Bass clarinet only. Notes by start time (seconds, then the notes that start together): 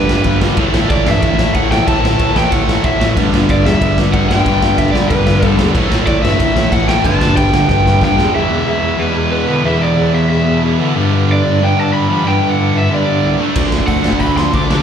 0.09 G2
0.24 G2
0.57 A2
0.72 A2
0.90 A2
1.05 G2
1.22 A2
1.36 A2
1.54 A2
1.70 A2
1.87 A2
2.01 A2
2.20 A2
2.34 E3
2.52 A2
2.66 A2
2.83 A2
2.99 A2
3.16 G2
3.32 G2
3.48 G2
3.64 E2
3.81 G2
3.97 G2
4.13 G2
4.29 G2
4.45 G2
4.62 G2
4.78 G2
4.94 D3
5.10 G2
5.27 G2
5.42 G2
5.59 E2
5.74 A2
5.90 A2
6.07 A2
6.22 G2
6.40 A2
6.55 A2
6.71 A2
7.04 G2
7.19 G2
7.37 G2
7.52 D3
7.69 G2
7.84 G2
8.01 G2
8.17 E2
8.33 E2
8.49 E2
8.65 E2
8.81 E2
8.98 E2
9.14 E2
9.30 E2
9.47 D3
9.65 E2
9.80 E2
9.97 E2
10.13 E2
10.30 E2
10.46 E2
10.62 E2
10.80 D3
10.95 G2
11.12 G2
11.28 G2
11.45 G2
11.60 G2
11.76 G2
11.93 G2
12.09 E3
12.25 G2
12.42 G2
12.58 G2
12.73 G2
12.90 G2
13.06 G2
13.22 C2
13.55 D2
13.73 D2
13.88 D2
14.04 D2
14.20 D2
14.38 D2
14.54 D2
14.71 C3